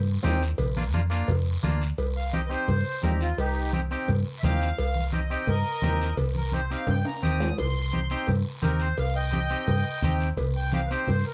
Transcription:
Already playing: fingered electric bass G2
0.23 fingered electric bass D#2, clean electric guitar C4 D#4 G4, high conga, low timbale, short guiro
0.42 short guiro
0.58 fingered electric bass A#1, cowbell, low conga, long guiro
0.76 clean electric guitar A#3 D4 F4, high conga
0.94 fingered electric bass F2, clean electric guitar A#3 D4 F4, high conga, short guiro
1.10 clean electric guitar A#3 D4 F4, short guiro
1.28 fingered electric bass F2, cowbell, low conga, long guiro
1.63 fingered electric bass D2, clean electric guitar A#3 D4 F4, high conga, short guiro
1.81 short guiro
1.98 fingered electric bass C2, cowbell, long guiro
2.16 accordion F5
2.33 clean electric guitar C4 D#4 G4, accordion D#5, high conga, short guiro
2.46 clean electric guitar C4 D#4, accordion B4
2.50 clean electric guitar G4, accordion C5, short guiro
2.68 fingered electric bass G2, cowbell, low conga, long guiro
3.03 fingered electric bass D#2, clean electric guitar C4 D#4 A#4, accordion G4, high conga, low timbale, short guiro
3.21 accordion F4, short guiro
3.38 fingered electric bass C2, accordion D#4 G4, cowbell, long guiro
3.73 clean electric guitar C4 D#4 G4, high conga, short guiro
3.91 clean electric guitar C4 D#4 G4, short guiro
4.08 fingered electric bass G2, cowbell, low conga, long guiro
4.39 fingered electric bass D#2, accordion E5
4.43 clean electric guitar C4 D#4 G4, accordion F5, high conga, low conga, low timbale, short guiro
4.61 short guiro
4.78 fingered electric bass C2, cowbell, long guiro
4.95 high conga
5.13 clean electric guitar C4 D#4 G4, accordion D#5, high conga, short guiro
5.30 clean electric guitar C4 D#4 G4, accordion D#5, short guiro
5.47 fingered electric bass G2, accordion A#4 D#5, cowbell, low conga, long guiro
5.82 fingered electric bass D#2, clean electric guitar C4 D#4 G4, high conga, low conga, low timbale, short guiro
6.01 short guiro
6.17 fingered electric bass C2, cowbell, low conga, long guiro
6.35 accordion A#4, high conga
6.52 clean electric guitar C4 D#4 G4, accordion C5, high conga, short guiro
6.70 clean electric guitar C4 D#4 G4, accordion F5, short guiro
6.87 fingered electric bass G2, accordion G5, cowbell, low conga, high timbale, long guiro
7.05 accordion A#5, high timbale
7.22 fingered electric bass D#2, clean electric guitar C4 D#4 G4, accordion D#6, high conga, short guiro
7.40 low timbale, short guiro
7.58 fingered electric bass C2, accordion C6, cowbell, low conga, long guiro
7.92 clean electric guitar C4 D#4 G4, high conga, short guiro
8.10 clean electric guitar C4 D#4 G4, short guiro
8.27 fingered electric bass G2, cowbell, low conga, long guiro
8.62 fingered electric bass D#2, clean electric guitar C4 D#4 G4, accordion A#4, high conga, low conga, short guiro
8.80 accordion C5, short guiro
8.97 fingered electric bass C2, accordion F5, cowbell, long guiro
9.15 accordion D#5 G5
9.32 clean electric guitar C4 D#4 G4, high conga, short guiro
9.50 clean electric guitar C4 D#4 G4, short guiro
9.67 fingered electric bass G2, cowbell, low conga, long guiro
10.02 fingered electric bass D#2, clean electric guitar C4 D#4 G4, high conga, low conga, short guiro
10.20 short guiro
10.37 fingered electric bass C2, cowbell, low conga, long guiro
10.56 accordion G5
10.73 clean electric guitar C4 D#4 G4, accordion F5, high conga, short guiro
10.86 accordion B4
10.91 clean electric guitar C4 D#4 G4, accordion C5, short guiro
11.07 fingered electric bass G2, cowbell, low conga, long guiro
11.26 accordion A#4

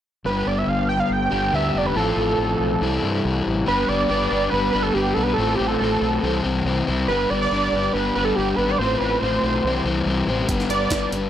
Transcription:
0.25 fingered electric bass G1, overdriven electric guitar G2 D3 G3 B3 D4 G4, analog synth lead B4
0.47 fingered electric bass G1, analog synth lead D5
0.58 analog synth lead E5
0.67 fingered electric bass G1, analog synth lead F5
0.89 analog synth lead G5
1.00 analog synth lead F5
1.10 fingered electric bass G1, analog synth lead G5
1.31 fingered electric bass G1, overdriven electric guitar G2 D3 G3 B3 D4 G4
1.52 fingered electric bass D2, overdriven electric guitar G2 D3 G3 B3 D4 G4, analog synth lead E5
1.74 fingered electric bass F1, analog synth lead D5
1.86 analog synth lead B4
1.95 fingered electric bass A1, overdriven electric guitar A2 F3 A3 C4 F4, analog synth lead A4
2.17 fingered electric bass A1
2.38 fingered electric bass A1
2.60 fingered electric bass B1
2.81 fingered electric bass C2, overdriven electric guitar C3 E3 G3 C4 E4
3.03 fingered electric bass G2
3.25 fingered electric bass C2
3.47 fingered electric bass A1
3.66 fingered electric bass G1, overdriven electric guitar G3 B3 D4 B4, analog synth lead B4
3.88 fingered electric bass G1, overdriven electric guitar B3 D4 B4, analog synth lead D5
4.00 analog synth lead D5
4.09 fingered electric bass G1, overdriven electric guitar G3 B3 D4 B4
4.30 fingered electric bass G1, overdriven electric guitar B3 D4 B4
4.50 fingered electric bass G1, overdriven electric guitar G3 B3 D4, analog synth lead B4
4.54 overdriven electric guitar B4
4.71 fingered electric bass G1, overdriven electric guitar B3 B4, analog synth lead B4
4.75 overdriven electric guitar G3 D4
4.83 analog synth lead A4
4.94 fingered electric bass G1, overdriven electric guitar G3 B3 D4 B4, analog synth lead G4
5.14 fingered electric bass B1, overdriven electric guitar B3 B4, analog synth lead A4
5.20 overdriven electric guitar D4, analog synth lead B4
5.33 overdriven electric guitar A2, analog synth lead A4
5.38 fingered electric bass A1, overdriven electric guitar A3 C4 F4 C5
5.55 analog synth lead G4, overdriven electric guitar C5
5.60 fingered electric bass A1, overdriven electric guitar C4 F4
5.68 analog synth lead A4
5.79 fingered electric bass A1, overdriven electric guitar A2 A3 C4 F4, analog synth lead A4
5.84 overdriven electric guitar C5
6.01 fingered electric bass B1, overdriven electric guitar C4 F4 C5
6.22 fingered electric bass C2, overdriven electric guitar C3 E3 G3 C4 E4 C5
6.44 fingered electric bass C2, overdriven electric guitar C3 E3 G3 C4 E4 C5
6.65 fingered electric bass C2, overdriven electric guitar G3 C4 E4 C5
6.87 fingered electric bass C2, overdriven electric guitar G3 C4 E4 C5
7.08 fingered electric bass G1, overdriven electric guitar G3 B3 D4 B4, analog synth lead B4
7.30 fingered electric bass G1, overdriven electric guitar B3 D4 B4, analog synth lead D5
7.42 analog synth lead D5
7.51 fingered electric bass G1, overdriven electric guitar G3 B3 D4 B4
7.72 fingered electric bass G1, overdriven electric guitar B3 B4
7.76 overdriven electric guitar D4
7.93 fingered electric bass G1, overdriven electric guitar G3 B3 D4, analog synth lead B4
7.98 overdriven electric guitar B4
8.15 fingered electric bass G1, overdriven electric guitar G3 B3 D4 B4, analog synth lead B4
8.25 analog synth lead A4
8.36 fingered electric bass G1, overdriven electric guitar G3 B3 D4, analog synth lead G4
8.40 overdriven electric guitar B4
8.56 fingered electric bass G#1, overdriven electric guitar B3 B4, analog synth lead B4
8.61 overdriven electric guitar D4
8.68 analog synth lead D5
8.78 fingered electric bass A1, overdriven electric guitar A2 A3 C4 F4, analog synth lead C5
8.83 overdriven electric guitar C5
8.98 fingered electric bass A1, analog synth lead B4, overdriven electric guitar C5
9.03 overdriven electric guitar C4 F4
9.08 analog synth lead B4
9.19 fingered electric bass A1, overdriven electric guitar A2 A3, analog synth lead C5
9.24 overdriven electric guitar C4 F4 C5
9.43 fingered electric bass B1, overdriven electric guitar C4 F4 C5
9.64 fingered electric bass C2, overdriven electric guitar C3 E3 G3 C4 E4 C5
9.85 fingered electric bass C2, overdriven electric guitar C3 E3 G3 C4 E4 C5
10.06 fingered electric bass C2, overdriven electric guitar G3 C4 E4 C5
10.27 fingered electric bass A1, overdriven electric guitar C4 E4 C5
10.31 overdriven electric guitar G3
10.49 fingered electric bass G1, overdriven electric guitar G3 B3 D4 B4, kick, closed hi-hat
10.60 snare
10.69 fingered electric bass G1, overdriven electric guitar B3 D4 B4, analog synth lead D5, closed hi-hat
10.90 fingered electric bass G1, overdriven electric guitar G3 B3 D4 B4, kick, snare, closed hi-hat
11.12 fingered electric bass G1, overdriven electric guitar B3 B4, closed hi-hat
11.16 overdriven electric guitar D4

